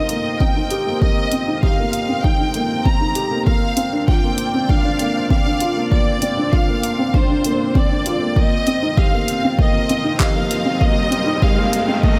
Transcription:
Already playing: A#3 C4 D#4 F4 G4 A#4 D#5
0.09 A#3, closed hi-hat
0.40 C4 G5, kick
0.56 D#4
0.70 G4, closed hi-hat
0.87 A#3
1.01 A#3 D#5, kick
1.32 C4, closed hi-hat
1.48 D#4
1.63 G4 F5, kick
1.79 A#3
1.93 closed hi-hat
2.09 C4
2.24 D#4 G5, kick
2.40 D#4
2.54 A#3, closed hi-hat
2.85 C4 A#5, kick
3.01 D#4
3.15 G4, closed hi-hat
3.31 A#3
3.45 A#3 C4 F5, kick
3.74 C4 D5, closed hi-hat
3.93 D4
4.08 F4 G5, kick
4.23 A#3
4.38 closed hi-hat
4.54 C4
4.69 D4 F5, kick
4.85 D4
4.99 A#3, closed hi-hat
5.30 C4 F5, kick
5.46 D4
5.60 F4, closed hi-hat
5.76 A#3
5.91 A#3 D5, kick
6.22 C4, closed hi-hat
6.37 D4
6.53 F4 F5, kick
6.68 A#3
6.83 closed hi-hat
6.99 C4
7.14 D4 C5, kick
7.30 D4
7.44 A#3, closed hi-hat
7.75 C4 D5, kick
7.91 D4
8.06 F4, closed hi-hat
8.21 A#3
8.36 A#3 D#5, kick, riser
8.51 F4
8.67 C4, closed hi-hat
8.82 D#4
8.97 G4 F5, kick
9.02 A#4
9.10 A#3 D#5
9.28 closed hi-hat
9.44 C4
9.59 A#3 D#5, kick
9.89 C4, closed hi-hat
10.04 D#4
10.19 G4 F5, kick, clap
10.35 A#3
10.51 closed hi-hat
10.65 C4
10.80 A#3 D#5, kick
11.11 C4, closed hi-hat
11.26 D#4
11.42 G4 F5, kick
11.56 A#3
11.73 closed hi-hat
11.88 C4
12.03 A#3 D#5, kick

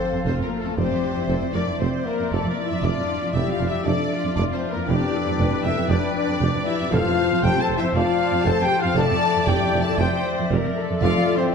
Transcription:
Already playing: F3 A3 C4 F4 A4 C5 F5 A5
0.00 C6
0.12 F2 A5
0.24 F1 F2 C4 F4 C5 C6
0.39 F2 A4 A#4
0.44 A#3
0.52 C5
0.58 A3 A4
0.64 F2 F4
0.75 F1 F2 F3 C4 G4 C5 D5 E5
0.91 F2 C4
1.04 D4
1.16 F2 E4
1.28 F1 F2 A4 C5
1.41 F2 D5
1.52 F1 F2 D4 A#4 D5 E5
1.67 F2 C6
1.78 F1 F2 C4 C5 E5
1.93 C6
2.05 A#3 A#4 E5
2.19 F2 C6
2.30 F1 F2 A3 A4 D5 E5
2.44 F2 A#4 C5
2.49 A#3 A#4
2.57 E4
2.65 E4 E5
2.70 F2 D4
2.81 F1 F2 F3 D4 F4 D5
2.96 F2 D4
3.08 E4
3.21 F2 A4
3.32 F1 F2 E4 G4 D5 E5
3.47 F2 F5
3.51 F4 F5
3.59 F1 F2 A5
3.67 E4 E5
3.72 F2 D6
3.82 F1 F2 D4 A4 D5 A5
4.10 F4 A5
4.23 F2 D6
4.35 F1 F2 D4 D5 A5
4.49 F2 C5 D5
4.53 C4 C5
4.61 A4
4.69 A#3 A#4
4.74 F2 E4
4.86 F1 F2 F3 D4 G4 B4 D5 G5
4.99 F2 B3
5.12 E4 A4
5.24 F2 G4
5.37 F1 F2 B4
5.50 F2 E5
5.63 F1 F2 E4 A4 E5 G5
5.75 F2 B5
5.89 F1 F2 D4 B4 D5 G5
6.02 B5
6.14 D4 D5 G5
6.28 F2 B5
6.40 F1 F2 D5 G5
6.53 F2 B4
6.65 E4 G4 E5
6.79 F2 E4
6.91 F1 F2 F3 F4 A4 C5 F5 A5
7.04 F2 C4
7.18 F4 C5
7.30 F2 A4
7.43 F1 F2 G4 C5 G5
7.56 F2 F5 A5
7.60 A4 A5
7.69 F1 F2 A5
7.76 E4 E5
7.82 F2 C6
7.94 F1 F2 F4 D5 F5 A5
8.08 C6
8.20 A5
8.32 F2
8.44 F1 F2 A4 C5 A5
8.59 F2 G4 G5
8.64 G5
8.73 A4
8.79 F4 F5
8.84 F2 F4
8.96 F1 F2 F3 A4 D5 E5 A5
9.10 F2 C4
9.23 D4
9.35 F2 E3
9.47 F1 F2 G4 C5 G5
9.61 F2 D5
9.73 F1 F2 G5
9.81 A4 A5
9.87 F2 C6
9.97 F1 F2 G4 C5 G5
10.13 C6
10.39 F2 C6
10.51 F1 F2 A#4
10.64 F2 C5
10.78 A4
10.90 F2 D4
11.01 F1 F2 F3 F4 D5 F5
11.16 F2 D4
11.29 E4
11.36 C4 C5
11.41 F2 A4

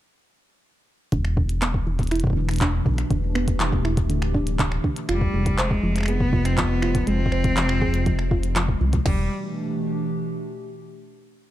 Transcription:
1.12 E1 B2 D3, kick, closed hi-hat
1.25 E3, finger snap
1.37 D3, kick
1.49 closed hi-hat
1.62 B3, finger snap, clap, closed hi-hat
1.74 kick
1.87 E3
1.94 A3 D4
1.99 kick, closed hi-hat
2.03 closed hi-hat
2.07 closed hi-hat
2.11 E4, finger snap, closed hi-hat
2.16 closed hi-hat
2.20 closed hi-hat
2.24 kick
2.27 kick
2.30 kick
2.33 D3, kick
2.49 finger snap, closed hi-hat
2.51 closed hi-hat
2.54 closed hi-hat
2.56 closed hi-hat
2.59 D4, kick, clap, closed hi-hat
2.76 G4
2.86 B1 D3, kick
2.98 finger snap, closed hi-hat
3.10 E1 D3, kick, closed hi-hat
3.35 B3, finger snap
3.48 kick, closed hi-hat
3.60 E3, clap, closed hi-hat
3.73 kick
3.85 E4, finger snap
3.97 kick, closed hi-hat
4.10 D1 D3, closed hi-hat
4.22 finger snap
4.34 D4, kick
4.47 closed hi-hat
4.59 D3, kick, clap, closed hi-hat
4.72 finger snap
4.84 D3, kick
4.96 closed hi-hat
5.09 F1 C3 G3 F4, finger snap, closed hi-hat
5.21 kick
5.34 F1 F3 G#3
5.46 G#3, kick, closed hi-hat
5.58 G#3 C5, finger snap, clap, closed hi-hat
5.71 kick
5.83 F1 F3
5.96 finger snap, closed hi-hat
5.98 finger snap
6.01 finger snap
6.03 finger snap
6.06 B3 F4 G#4, finger snap, closed hi-hat
6.20 kick
6.33 F3, kick
6.45 C4, finger snap, closed hi-hat
6.58 F3 B3, kick, clap, closed hi-hat
6.82 F4, finger snap
6.95 kick, closed hi-hat
7.07 F1 G#3 C4, closed hi-hat
7.26 kick
7.32 C5, finger snap
7.44 kick, closed hi-hat
7.57 F3, clap, closed hi-hat
7.69 finger snap
7.82 G#4, kick
7.94 closed hi-hat
8.06 F3, kick, closed hi-hat
8.19 finger snap
8.31 F4, kick
8.43 closed hi-hat
8.56 F3, finger snap, clap, closed hi-hat
8.68 kick
8.81 C2 F3
8.93 F3, kick, closed hi-hat
9.05 E1 B2 D3 G3, kick, snare, crash
9.13 E3
9.20 A3
9.28 D4
9.35 G4

